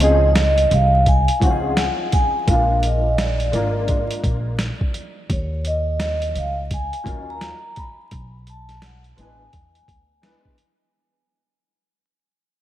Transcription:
Already playing: C#2
0.00 F3 C4 C#4 D#4 G#4 D#5, closed hi-hat
0.35 snare, closed hi-hat
0.58 closed hi-hat
0.71 C2 F5, closed hi-hat
1.06 G#5, kick, closed hi-hat
1.28 closed hi-hat
1.40 C#2 F3 C4 C#4 D#4 F#4 F#5, kick, closed hi-hat
1.50 G#4
1.77 snare, closed hi-hat
2.12 G#5, kick, closed hi-hat
2.46 A#1 G#3 A#3 D4 F4 A#4 F5, kick, closed hi-hat
2.83 D#5, closed hi-hat
3.18 D5, snare, closed hi-hat
3.40 closed hi-hat
3.52 G#1 G#3 A#3 D4 F4 A#4, closed hi-hat
3.88 kick, closed hi-hat
4.11 closed hi-hat
4.24 A#1, kick, closed hi-hat
4.59 snare, closed hi-hat
4.81 kick
4.94 closed hi-hat
5.30 D#2 C#5, kick, closed hi-hat
5.65 D#5, closed hi-hat
6.00 snare, closed hi-hat
6.22 closed hi-hat
6.36 C#2 F5, closed hi-hat
6.71 G#5, kick, closed hi-hat
6.93 closed hi-hat
7.04 D#2 F#3 C#4 D#4 F4 A#4, kick, closed hi-hat
7.30 A#5
7.41 snare, closed hi-hat
7.76 B5, kick, closed hi-hat
8.11 B1, kick, closed hi-hat
8.47 A5, closed hi-hat
8.69 snare, closed hi-hat
8.82 F#5, snare, closed hi-hat
9.04 closed hi-hat
9.16 A1 G#3 B3 D4 E4 B4, closed hi-hat
9.20 G#5
9.53 E2, kick, closed hi-hat
9.75 closed hi-hat
9.88 D2, kick, closed hi-hat
10.22 G#3 B3 D4 E4 B4, snare, closed hi-hat
10.45 kick
10.58 closed hi-hat

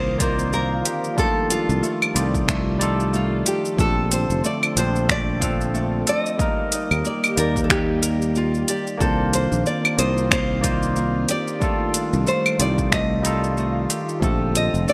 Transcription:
Already playing: C2 D3 D#3 F3 A#3 C4 D#4 F4 C5 D#6
0.18 A#3 D#4 F4 A#4 D5, kick, closed hi-hat, shaker
0.22 C5
0.39 shaker
0.53 A#3 A#4, shaker
0.85 G4, closed hi-hat, shaker
1.04 shaker
1.15 D#3 G3 A3 D4 F4 A4, kick, shaker
1.20 A4
1.50 D4 F4, closed hi-hat, shaker
1.69 C2, shaker
1.82 A3, shaker
2.02 claves, shaker
2.14 C2 D#3 G3 D#4 F4 D5, closed hi-hat, shaker
2.34 kick, shaker
2.48 A3, finger snap, kick, shaker
2.79 G3 D#4 F4 D5, closed hi-hat, shaker
2.83 A4
3.00 shaker
3.13 A3 F4, shaker
3.46 G4, closed hi-hat, shaker
3.65 shaker
3.77 A#1 D3 F3 A3 C4 D4 A4, kick, shaker
4.11 C4 C5, closed hi-hat, shaker
4.30 F1, shaker
4.44 A3 D5, shaker
4.63 claves, shaker
4.76 A#1 F3 C4 D4 C5, closed hi-hat, shaker
4.96 shaker
5.09 A3 D5, finger snap, kick, shaker
5.40 F3 C4 D4 F4, kick, closed hi-hat, shaker
5.44 A4
5.61 shaker
5.74 A3, shaker
6.07 A4 D5, closed hi-hat, shaker
6.20 D#5
6.26 shaker
6.37 D#3 G3 A#3 D#4 G4 D#5, kick, shaker
6.41 A#4
6.72 D#4, closed hi-hat, shaker
6.91 D#2, claves, shaker
7.04 A#3 D5, shaker
7.24 claves, shaker
7.36 D#2 G3 A#3 D#4 G4 A#4 D5, closed hi-hat, shaker
7.56 kick, shaker
7.64 A4
7.69 A#3 G4, finger snap, kick, shaker
8.02 A#4, closed hi-hat, shaker
8.22 shaker
8.35 A#3 F4, shaker
8.54 shaker
8.68 G4 D5, closed hi-hat, shaker
8.87 shaker
8.98 C2 D#3 A#3 C4 D4 F4 A4, kick, shaker
9.02 C5
9.33 D4 C5, closed hi-hat, shaker
9.52 A#1, shaker
9.66 A#3 D5, shaker
9.85 claves, shaker
9.97 C2 D#3 A#3 D#4 F4 C5 D#6, closed hi-hat, shaker
10.18 shaker
10.31 A#3 C5, finger snap, kick, shaker
10.61 A#3 D#4 F4 D5, kick, closed hi-hat, shaker
10.65 C5
10.83 shaker
10.96 A#3, shaker
11.29 G4 D5, closed hi-hat, shaker
11.48 shaker
11.59 D#3 G3 A3 D4 F4, kick, shaker
11.64 A4
11.94 D4, closed hi-hat, shaker
12.13 C2, shaker
12.27 A3 C5, shaker
12.46 claves, shaker
12.59 C2 D#3 G3 D#4 F4 D5, closed hi-hat, shaker
12.78 kick, shaker
12.92 A3 D#5, finger snap, kick, shaker
13.22 G3 D#4 F4 D#5, closed hi-hat, shaker
13.26 A4
13.44 shaker
13.57 A3, shaker
13.90 G4, closed hi-hat, shaker
14.09 shaker
14.20 A#1 D3 F3 A3 C4 A5, kick, shaker
14.24 A4
14.55 C4 D#5, closed hi-hat, shaker
14.74 F1, shaker
14.88 A3 D5, shaker

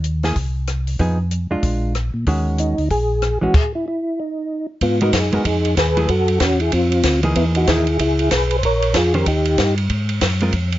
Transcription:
Already playing: D#2
0.04 closed hi-hat
0.23 A#3 E4 G#4, snare, open hi-hat
0.36 C2, kick, open hi-hat
0.67 cross-stick, closed hi-hat
0.87 open hi-hat
0.99 F2 F3 B3 D#4 G#4, kick, open hi-hat
1.31 closed hi-hat
1.51 F2 G#3 D4 F4
1.63 A#1, kick, open hi-hat
1.95 cross-stick, closed hi-hat
2.14 A#2
2.26 D#2 D#3 G#3 C#4 F#4, kick, open hi-hat
2.58 D#4, closed hi-hat
2.78 D2, open hi-hat
2.90 A#1 G#4, kick, open hi-hat
3.22 cross-stick, closed hi-hat
3.41 A#1 E3 G#3 C#4 F#4
3.54 G#4, kick, crash
3.75 E4
3.88 E4
4.20 D#4
4.81 G#2 B3 F4, kick, ride
5.01 G#3 B3 D#4 F#4 A#4, ride
5.13 F#2 D#4 G#4, kick, snare, hi-hat pedal, ride
5.32 F#2 G#3 B3 F#4 A#4, ride
5.45 F2 D#4 G#4, kick, ride
5.65 ride
5.77 D#2 G#4 B4, kick, snare, hi-hat pedal, ride
5.97 F#3 A3 E4 G#4, ride
6.09 F#2 F#4 A4, kick, ride
6.28 ride
6.40 E2 C#4 F#4, kick, snare, hi-hat pedal, ride
6.60 E4 G#4, ride
6.72 F2 C4 F4, kick, ride
6.92 ride
7.03 D2, kick, snare, hi-hat pedal, ride
7.23 E3 A#3 D#4 G#4, ride
7.36 E2 B3 E4, kick, ride
7.55 D#4 F#4, ride
7.67 D#2 E3 A#3 D#4 E4 G#4, kick, snare, hi-hat pedal, ride
7.87 ride
7.99 C#2 E4 G#4, kick, ride
8.19 ride
8.31 B1 G#4 B4, kick, snare, hi-hat pedal, ride
8.51 ride
8.59 C5
8.63 A#1 A#4 C#5, kick, ride
8.82 ride
8.94 F2 F4 G#4, kick, snare, hi-hat pedal, ride
9.14 D#3 C#4 G4 A#4 C5, ride
9.26 D#2 D#4 G4, kick, ride
9.45 ride
9.58 G2, kick, snare, hi-hat pedal, ride
9.78 ride
9.90 G#2, kick, ride
10.09 ride
10.21 F#2, kick, snare, hi-hat pedal, ride
10.40 G#3 C4 F4 A#4, ride
10.53 F2, kick, ride
10.72 ride

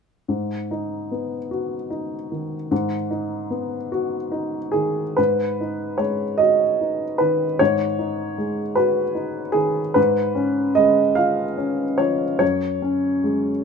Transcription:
0.28 G#2
0.71 D#4
1.11 B3
1.51 F#4
1.90 D#4
2.32 D#3
2.71 G#2
3.11 D#4
3.50 B3
3.92 F#4
4.31 D#4
4.72 D#3 G#4
5.17 G#2 B4
5.61 D#4
5.98 G#3 C#5
6.38 F#4 D#5
6.81 D#4
7.18 D#3 B4
7.59 G#2 C#5
7.99 D#4
8.38 G#3
8.75 F#4 B4
9.15 D#4
9.52 D#3 G#4
9.94 G#2 B4
10.35 C#4
10.75 G#3 D#5
11.15 F4 F5
11.58 C#4
11.98 F3 C#5
12.39 F#2 C#5
12.82 C#4
13.24 G#3

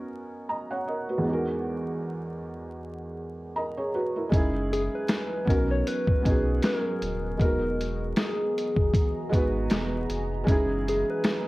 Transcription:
Already playing: B3 C#4 D#4 F#4 A#4
0.49 D#5 A#5
0.70 C#5 F#5
0.87 A#4 D#5
1.09 F#4 B4
1.18 E2 G#3
1.24 B3 D#4
1.30 F#4 A#4
3.56 A#4 D#5 A#5
3.77 G#4 C#5
3.95 F#4 B4
4.16 E4 A#4
4.29 F#1 E3 F#3 G#3 C#4 D#4 G#4 D#5 A#5, kick
4.33 E4 G#4, closed hi-hat
4.73 G#4, closed hi-hat
4.95 B4
5.08 finger snap, snare, closed hi-hat
5.45 B1 F#3 B3 C#4 D#4, kick
5.50 F#4 A#4, closed hi-hat
5.71 C#5
5.87 B4, closed hi-hat
6.07 B1, kick
6.22 B3 C#4 D#4, kick, closed hi-hat
6.26 B1 F#4 G#4
6.62 A#4, finger snap, snare, closed hi-hat
7.02 D#1, closed hi-hat
7.37 E1 E3 G#3 B3 D#4 F#4 G#4 A#5, kick, closed hi-hat
7.42 F#4 A#4
7.81 closed hi-hat
8.16 G#4, finger snap, snare, closed hi-hat
8.58 closed hi-hat
8.76 F#1, kick
8.93 kick, closed hi-hat
9.29 G#1 G#3 B3 D#4, kick
9.34 F#4 B4, closed hi-hat
9.70 E1, finger snap, snare, closed hi-hat
10.09 F1, closed hi-hat
10.44 F#1 E3 F#3 G#3 C#4 D#4 G#4 D#5, kick
10.48 E4 G#4, closed hi-hat
10.88 G#4, closed hi-hat
11.10 B4
11.24 finger snap, snare, closed hi-hat

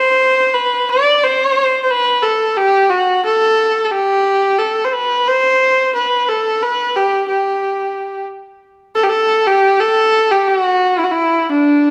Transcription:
Already playing: C5
0.54 B4
0.89 D5
1.24 C5
1.83 C5
1.90 B4
2.23 A4
2.57 G4
2.90 F#4
3.25 A4
3.84 A4
3.91 G4
4.59 A4
4.84 C5
4.93 B4
5.27 C5
5.95 B4
6.29 A4
6.62 B4
6.96 G4
7.28 G4
8.95 A4
9.03 G4
9.09 A4
9.47 G4
9.80 A4
10.31 G4
10.48 G4
10.60 F#4
10.99 E4
11.04 F#4
11.11 E4
11.49 D4

